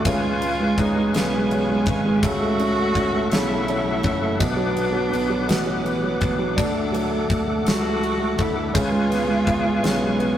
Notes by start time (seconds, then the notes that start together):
0.05 C#2 C#3 F4 B4 F5 G#5 C#6, kick, ride
0.23 G#3
0.41 C#3, ride
0.60 G#3
0.78 C#2 C#3 D#4, kick, ride
0.96 G#3
1.14 B1 C#3 B3, snare, ride
1.34 G#3
1.51 C#3, ride
1.70 G#3
1.86 G#1 C#3 C#4, kick, ride
2.06 G#3
2.17 G4
2.23 C#2 C#3 F#4 A4 E5 F#5, kick, ride
2.42 A3
2.59 C#4, ride
2.78 A3
2.95 C#2 C#4, kick, ride
3.14 A3
3.31 B1 C#3 E4, snare, ride
3.50 A3
3.68 C#4, ride
3.86 A3
4.03 F#1 C#4, kick, ride
4.21 A3
4.39 B1 B2 D4 B4 D6, kick, ride
4.57 F#3
4.75 B3, ride
4.93 F#3
5.11 B1 B3, ride
5.30 F#3
5.48 A1 B2 C#4, snare, ride
5.66 F#3
5.85 B3, ride
6.04 F#3
6.20 A1 B3 D4, kick, ride
6.39 F#3
6.56 D2 D4 A4, kick, ride
6.74 A3
6.92 F#3, ride
7.10 A3
7.30 D2, kick, ride
7.47 A3
7.66 C#2 F#4, snare, ride
7.83 A3
8.03 ride
8.19 A3
8.38 D2 D3 E4, kick, ride
8.55 A3
8.74 C#2 C#3 F4 B4 F5 G#5 C#6, kick, ride
8.92 G#3
9.10 B3, snare, ride
9.28 G#3
9.46 C#2 B3, kick, ride
9.65 G#3
9.83 B1 C#3, snare, ride
10.00 G#3
10.19 B3, ride